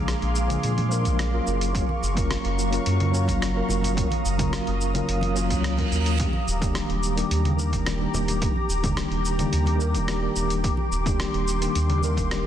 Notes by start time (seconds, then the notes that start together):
Already playing: A#1 F3 G#3 A#3 D4 G#4 F5 C6 D6
0.08 cross-stick, closed hi-hat, cabasa
0.22 A#1, closed hi-hat
0.36 cabasa
0.48 F3 G#3 A#3 D4 G#4, closed hi-hat, low conga, cabasa
0.63 A#2, closed hi-hat, cabasa
0.78 closed hi-hat, high conga
0.89 F3 G#3 A#3 D4 A#4, cabasa
1.05 A#1, closed hi-hat, high conga, cabasa
1.19 cross-stick, closed hi-hat, cabasa
1.31 F#3 A#3 C#4 F4 A#4
1.47 F#1 F#3 F5 A#5 C#6, cabasa
1.61 closed hi-hat, cabasa
1.73 F#3 A#3 C#4 F4 A#4, kick, closed hi-hat, cabasa
1.89 high conga
2.03 F#1, cabasa
2.14 F#3 A#3 C#4 F4 A#4, kick, closed hi-hat, cabasa
2.31 cross-stick, closed hi-hat, cabasa
2.45 F#1, closed hi-hat
2.59 cabasa
2.70 F#3 A#3 C#4 F4 A#4, closed hi-hat, cabasa
2.86 F#2, closed hi-hat, cabasa
3.00 closed hi-hat, low conga
3.11 F#3 A#3 C#4 F4 C#5, cabasa
3.28 F#1, kick, closed hi-hat, cabasa
3.42 cross-stick, closed hi-hat, cabasa
3.54 F#3 A#3 C#4 F4 A#4
3.69 F#1 D#6, low conga, cabasa
3.82 closed hi-hat, low conga, cabasa
3.95 F#3 A#3 C#4 F4 A#4, kick, closed hi-hat, cabasa
4.11 closed hi-hat, high conga
4.25 F#1, cabasa
4.37 F#3 A#3 C#4 F4 A#4, kick, closed hi-hat, low conga, cabasa
4.53 cross-stick, closed hi-hat, cabasa
4.67 F#1, closed hi-hat
4.81 cabasa
4.94 F#3 A#3 C#4 F4 A#4, closed hi-hat, low conga, cabasa
5.08 F#1, closed hi-hat, reverse cymbal, cabasa
5.21 closed hi-hat, high conga
5.34 F#3 A#3 C#4 F4 C#5, cabasa
5.50 C#2, kick, closed hi-hat, high conga, cabasa
5.64 cross-stick, closed hi-hat, cabasa
5.76 F#3 A#3 C#4 F4 A#4, kick, closed hi-hat, high conga
5.92 D#2, cabasa
6.06 closed hi-hat, cabasa
6.17 D#3 G3 A#3 D4 G4 A#5 D6, kick, closed hi-hat, cabasa
6.33 high conga
6.48 D#1, cabasa
6.60 D#3 G3 A#3 D4 G4, kick, closed hi-hat, cabasa
6.75 cross-stick, closed hi-hat, cabasa
6.89 D#1, closed hi-hat
7.03 cabasa
7.15 D#3 G3 A#3 D4 G4, closed hi-hat, cabasa
7.31 D#2, closed hi-hat, cabasa
7.45 closed hi-hat, low conga
7.56 D#3 G3 A#3 D4 A#4, cabasa
7.73 D#1, kick, closed hi-hat, cabasa
7.86 cross-stick, closed hi-hat, cabasa
7.99 D#3 G3 A#3 D4 G4
8.14 D#1, low conga, cabasa
8.28 closed hi-hat, low conga, cabasa
8.40 D#3 G3 A#3 D4 G4, kick, closed hi-hat, cabasa
8.56 high conga
8.69 D#1, cabasa
8.83 D#3 G3 A#3 D4 G4, kick, closed hi-hat, low conga, cabasa
8.97 cross-stick, closed hi-hat, cabasa
9.11 D#1, closed hi-hat
9.25 cabasa
9.38 D#3 G3 A#3 D4 G4, closed hi-hat, low conga, cabasa
9.53 D#2, closed hi-hat, cabasa
9.66 closed hi-hat, high conga
9.78 D#3 G3 A#3 D4 A#4, cabasa
9.94 D#1, closed hi-hat, high conga, cabasa
10.08 cross-stick, closed hi-hat, cabasa
10.20 D#3 G3 A#3 D4 G4
10.36 D#1, cabasa
10.50 closed hi-hat, cabasa
10.62 D#3 G3 A#3 D4 G4 C6, kick, closed hi-hat, cabasa
10.77 high conga
10.92 D#1, cabasa
11.04 D#3 G3 A#3 D4 G4, kick, closed hi-hat, cabasa
11.20 cross-stick, closed hi-hat, cabasa
11.34 D#1, closed hi-hat
11.48 cabasa
11.61 D#3 G3 A#3 D4 G4, closed hi-hat, cabasa
11.75 D#2, closed hi-hat, cabasa
11.90 closed hi-hat, low conga
12.02 D#3 G3 A#3 D4 A#4, cabasa
12.17 D#1, kick, closed hi-hat, cabasa
12.31 cross-stick, closed hi-hat, cabasa
12.43 D#3